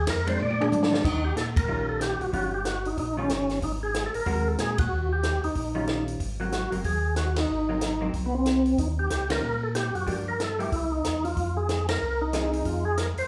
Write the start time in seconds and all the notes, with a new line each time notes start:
0.07 F2 A#4, kick, snare, hi-hat pedal, ride
0.27 G#3 C4 D4 C5, ride
0.40 A#2 D5, high tom
0.50 high tom
0.61 D4 G#4, high tom
0.72 G#2, hi-hat pedal, mid tom
0.83 snare
0.91 D#3 G3 C#4 F4, snare
1.04 D#2 D#4, kick, crash
1.25 G4
1.36 A#2 A4, snare, closed hi-hat
1.56 A#4, kick, ride
1.68 A#1 D#3 G3 C#4 F4
1.89 A4
2.01 G4, snare, closed hi-hat
2.21 A#1 F#4, open hi-hat
2.32 G1 D#3 G3 C#4 F4 F#4, kick, open hi-hat
2.54 G4
2.65 F#4, snare, closed hi-hat
2.85 D#4, open hi-hat
2.97 A#1 D#4, kick, open hi-hat
3.17 D#3 G3 C#4 F4
3.29 G1, snare, closed hi-hat
3.49 snare, open hi-hat
3.62 G#1 D#4, kick, open hi-hat
3.83 G#4
3.94 snare, closed hi-hat
4.06 A4
4.14 G#1 A#4, open hi-hat
4.26 D#2 G#3 C4 F#4 A#4, kick, open hi-hat
4.48 A4
4.58 A#2 G#4, snare, closed hi-hat
4.78 F#4, kick, ride
4.91 D#2
5.13 G4
5.23 snare, closed hi-hat
5.43 D#2 D#4, open hi-hat
5.55 A#1 D#4, kick, open hi-hat
5.75 D#3 G3 C#4 F4
5.87 snare, closed hi-hat
6.08 open hi-hat
6.20 G#1, kick, open hi-hat
6.40 F#3 A#3 C4 F#4
6.52 snare, closed hi-hat
6.71 F#1 F#3 A#3 C4, open hi-hat
6.84 D#2 G#4, kick, open hi-hat
7.16 F#4, snare, closed hi-hat
7.36 D#4, snare, ride
7.49 G#1
7.69 F#3 A#3 C4
7.81 snare, closed hi-hat
8.01 F#3 A#3 C4
8.14 C2, kick, open hi-hat
8.26 B3
8.35 C4
8.46 snare, closed hi-hat
8.65 open hi-hat
8.78 D#2 D#4, kick, open hi-hat
8.99 G4
9.10 C#2, snare, closed hi-hat
9.30 D#3 G3 C#4 F4 A#4, snare, ride
9.42 A#2
9.63 A4
9.75 G4, snare, closed hi-hat
9.95 F#2 F#4, open hi-hat
10.07 G2 F3 A#3 D4 G4, kick, open hi-hat
10.28 A#4
10.40 A4, snare, closed hi-hat
10.59 G3 A#3 E4 G4, open hi-hat
10.72 C2 E4, kick, open hi-hat
10.92 D#4
11.04 E2, snare, closed hi-hat
11.24 F4, open hi-hat
11.37 F2, kick, open hi-hat
11.57 G#4
11.69 snare, closed hi-hat
11.89 A#4, snare, ride
12.01 C2
12.21 D#4
12.33 F3 C4 D#4 G#4, snare, closed hi-hat
12.53 open hi-hat
12.65 F2 F4, kick, open hi-hat
12.85 G#4
12.97 A#4, snare, closed hi-hat
13.17 F2 C5, open hi-hat